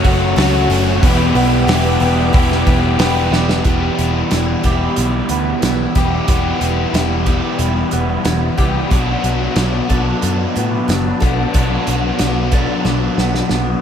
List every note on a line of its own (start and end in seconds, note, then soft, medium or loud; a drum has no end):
0.00 0.70 F#2 medium
0.00 0.70 C#3 medium
0.00 0.36 F#3 loud
0.00 0.34 F#3 medium
0.00 0.35 A3 medium
0.00 0.37 A3 loud
0.00 0.38 C#4 loud
0.00 0.69 C#4 medium
0.00 0.38 F#4 loud
0.00 1.00 A4 medium
0.00 1.00 C#5 medium
0.00 1.00 F#5 medium
0.00 1.00 C#6 medium
0.04 0.33 F#1 medium
0.04 0.36 F#3 medium
0.04 0.35 A3 medium
0.04 0.36 C#4 medium
0.04 0.36 F#4 medium
0.04 kick medium
0.04 open hi-hat medium
0.36 0.66 C#2 medium
0.36 0.68 F#3 medium
0.36 0.69 A3 medium
0.36 0.69 C#4 medium
0.36 0.70 F#4 loud
0.36 snare loud
0.36 open hi-hat medium
0.70 0.98 F#1 loud
0.70 1.01 F#3 medium
0.70 1.01 A3 loud
0.70 1.01 C#4 loud
0.70 1.02 F#4 loud
0.70 open hi-hat medium
1.03 1.31 E1 medium
1.03 2.02 E2 medium
1.03 2.02 B2 loud
1.03 1.34 E3 loud
1.03 1.68 G3 loud
1.03 1.34 B3 loud
1.03 1.35 E4 medium
1.03 1.35 G4 loud
1.03 3.64 B4 medium
1.03 3.63 E5 medium
1.03 3.63 G5 medium
1.03 3.63 D6 medium
1.03 kick loud
1.03 open hi-hat loud
1.35 1.64 B1 medium
1.35 1.66 E3 medium
1.35 1.67 B3 medium
1.35 1.68 E4 medium
1.35 1.68 G4 loud
1.35 open hi-hat medium
1.67 1.96 E1 loud
1.67 1.99 E3 medium
1.67 2.01 G3 medium
1.67 1.99 B3 medium
1.67 2.32 D4 medium
1.67 2.00 E4 medium
1.67 2.01 G4 medium
1.67 snare loud
1.67 open hi-hat medium
2.00 2.30 E1 medium
2.00 2.32 E3 medium
2.00 2.33 G3 medium
2.00 2.33 B3 medium
2.00 2.33 E4 medium
2.00 2.33 G4 medium
2.00 open hi-hat medium
2.33 2.63 E1 loud
2.33 3.32 E2 loud
2.33 3.32 B2 medium
2.33 2.65 E3 medium
2.33 2.99 G3 loud
2.33 2.65 B3 loud
2.33 3.32 D4 medium
2.33 2.66 E4 loud
2.33 2.66 G4 loud
2.33 kick loud
2.33 open hi-hat medium
2.52 snare soft
2.66 2.96 E1 loud
2.66 2.98 E3 medium
2.66 2.98 G3 medium
2.66 2.98 B3 medium
2.66 2.98 E4 medium
2.66 2.99 G4 medium
2.66 kick medium
2.66 open hi-hat medium
2.70 2.96 E3 medium
2.99 3.28 E1 medium
2.99 3.30 E3 medium
2.99 3.64 G3 medium
2.99 3.31 B3 medium
2.99 3.31 E4 loud
2.99 3.32 G4 medium
2.99 snare loud
2.99 open hi-hat medium
3.31 3.60 E1 loud
3.31 3.63 E3 medium
3.31 3.63 B3 medium
3.31 3.66 D4 medium
3.31 3.63 E4 loud
3.31 3.64 G4 medium
3.31 snare medium
3.49 snare loud
3.64 3.88 E1 medium
3.64 4.65 E2 medium
3.64 4.62 B2 medium
3.64 3.97 E3 medium
3.64 3.98 G3 medium
3.64 3.98 B3 medium
3.64 3.99 E4 medium
3.64 4.63 G4 medium
3.64 kick loud
3.64 closed hi-hat medium
3.97 4.22 E1 medium
3.97 4.30 E3 medium
3.97 4.31 G3 medium
3.97 4.32 B3 medium
3.97 4.32 E4 medium
3.97 closed hi-hat medium
4.31 4.55 E1 medium
4.31 4.62 E3 medium
4.31 4.63 G3 medium
4.31 4.63 B3 medium
4.31 4.64 E4 loud
4.31 snare loud
4.31 closed hi-hat medium
4.63 4.87 E1 medium
4.63 6.26 E2 medium
4.63 6.26 B2 medium
4.63 4.95 E3 medium
4.63 4.96 G3 medium
4.63 4.97 B3 medium
4.63 4.98 E4 medium
4.63 6.26 G4 medium
4.63 5.96 G4 medium
4.63 kick medium
4.63 closed hi-hat medium
4.96 5.20 B1 medium
4.96 5.28 E3 medium
4.96 5.28 G3 medium
4.96 5.29 B3 loud
4.96 5.29 E4 medium
4.96 closed hi-hat medium
5.29 5.53 D2 medium
5.29 5.61 E3 medium
5.29 5.62 G3 medium
5.29 5.63 B3 medium
5.29 5.63 E4 medium
5.29 closed hi-hat medium
5.62 5.86 B1 medium
5.62 5.94 E3 medium
5.62 5.94 G3 medium
5.62 5.96 B3 medium
5.62 5.95 E4 medium
5.62 snare loud
5.62 closed hi-hat medium
5.95 6.19 E1 medium
5.95 6.28 B2 medium
5.95 6.26 E3 medium
5.95 6.27 G3 medium
5.95 6.28 B3 medium
5.95 6.28 E4 medium
5.95 6.27 G4 medium
5.95 7.26 G4 medium
5.95 kick medium
5.95 snare soft
5.95 closed hi-hat medium
5.99 6.27 E2 medium
6.27 6.52 E1 medium
6.27 7.24 E2 medium
6.27 7.24 B2 medium
6.27 6.58 E3 medium
6.27 6.59 G3 medium
6.27 6.61 B3 loud
6.27 6.60 E4 loud
6.27 7.24 G4 loud
6.27 kick loud
6.27 closed hi-hat loud
6.60 6.84 E1 medium
6.60 6.91 E3 medium
6.60 6.92 G3 medium
6.60 6.93 B3 medium
6.60 6.92 E4 medium
6.60 closed hi-hat medium
6.92 7.40 E1 medium
6.92 7.24 E3 medium
6.92 7.24 G3 medium
6.92 7.26 B3 medium
6.92 7.26 E4 medium
6.92 snare loud
6.92 closed hi-hat loud
7.25 8.90 E2 medium
7.25 8.89 B2 medium
7.25 7.57 E3 medium
7.25 7.57 G3 medium
7.25 7.59 B3 medium
7.25 7.58 E4 medium
7.25 8.89 G4 medium
7.25 8.56 G4 medium
7.25 kick medium
7.25 closed hi-hat medium
7.58 7.82 E1 medium
7.58 7.90 E3 medium
7.58 7.90 G3 loud
7.58 7.92 B3 medium
7.58 7.91 E4 loud
7.58 closed hi-hat medium
7.91 8.16 E1 medium
7.91 8.22 E3 medium
7.91 8.22 G3 medium
7.91 8.24 B3 medium
7.91 8.24 E4 medium
7.91 closed hi-hat medium
8.23 8.49 E1 medium
8.23 8.56 E3 medium
8.23 8.57 G3 medium
8.23 8.59 B3 medium
8.23 8.58 E4 medium
8.23 snare loud
8.23 closed hi-hat medium
8.57 8.82 C2 medium
8.57 8.88 B2 medium
8.57 8.89 E3 medium
8.57 8.89 G3 medium
8.57 8.90 B3 medium
8.57 8.90 E4 medium
8.57 8.91 G4 medium
8.57 8.89 G4 medium
8.57 kick medium
8.57 closed hi-hat medium
8.62 8.91 E2 medium
8.89 9.14 B1 medium
8.89 9.21 B2 medium
8.89 9.23 F#3 medium
8.89 9.23 B3 medium
8.89 9.23 D4 loud
8.89 9.88 F#4 loud
8.89 kick loud
8.89 closed hi-hat medium
9.22 9.47 B1 medium
9.22 9.55 B2 medium
9.22 9.56 F#3 medium
9.22 9.57 B3 medium
9.22 9.57 D4 medium
9.22 closed hi-hat medium
9.56 9.79 B1 medium
9.56 9.87 B2 medium
9.56 9.88 F#3 medium
9.56 9.88 B3 medium
9.56 9.89 D4 medium
9.56 snare loud
9.56 closed hi-hat medium
9.88 10.13 B1 medium
9.88 10.21 B2 medium
9.88 10.22 F#3 medium
9.88 10.23 B3 medium
9.88 10.22 D4 medium
9.88 11.55 F#4 medium
9.88 11.19 A4 medium
9.88 kick medium
9.88 closed hi-hat medium
10.22 10.46 F#2 medium
10.22 10.54 B2 medium
10.22 10.56 F#3 medium
10.22 10.56 B3 loud
10.22 10.56 D4 medium
10.22 closed hi-hat medium
10.56 10.79 A2 medium
10.56 10.87 B2 medium
10.56 10.89 F#3 medium
10.56 10.90 B3 medium
10.56 10.89 D4 medium
10.56 closed hi-hat medium
10.89 11.11 F#1 medium
10.89 11.21 B2 medium
10.89 11.22 F#3 medium
10.89 11.22 B3 medium
10.89 11.23 D4 medium
10.89 snare loud
10.89 closed hi-hat medium
11.20 11.45 B1 medium
11.20 11.52 B2 medium
11.20 11.53 F#3 medium
11.20 11.54 B3 medium
11.20 11.54 D4 medium
11.20 11.58 F#4 medium
11.20 12.52 A4 medium
11.20 kick medium
11.20 closed hi-hat medium
11.53 11.77 B1 medium
11.53 11.86 B2 loud
11.53 11.86 F#3 medium
11.53 11.87 B3 medium
11.53 11.88 D4 loud
11.53 12.50 F#4 loud
11.53 kick loud
11.53 closed hi-hat loud
11.87 12.10 B1 medium
11.87 12.18 B2 medium
11.87 12.19 F#3 medium
11.87 12.19 B3 medium
11.87 12.20 D4 medium
11.87 closed hi-hat medium
12.19 12.66 B1 medium
12.19 12.51 B2 medium
12.19 12.52 F#3 medium
12.19 12.52 B3 medium
12.19 12.53 D4 medium
12.19 snare loud
12.19 closed hi-hat medium
12.51 12.83 B2 medium
12.51 12.84 F#3 medium
12.51 12.85 B3 medium
12.51 12.85 D4 medium
12.51 13.81 F#4 medium
12.51 13.81 A4 medium
12.51 kick medium
12.51 closed hi-hat medium
12.84 13.08 B1 medium
12.84 13.17 B2 medium
12.84 13.17 F#3 medium
12.84 13.18 B3 loud
12.84 13.18 D4 loud
12.84 snare medium
13.18 13.41 B1 medium
13.18 13.48 B2 medium
13.18 13.49 F#3 medium
13.18 13.50 B3 medium
13.18 13.50 D4 medium
13.18 snare medium
13.35 snare medium
13.49 13.74 B1 medium
13.49 13.81 B2 medium
13.49 13.81 F#3 medium
13.49 13.81 B3 medium
13.49 13.81 D4 medium
13.49 snare medium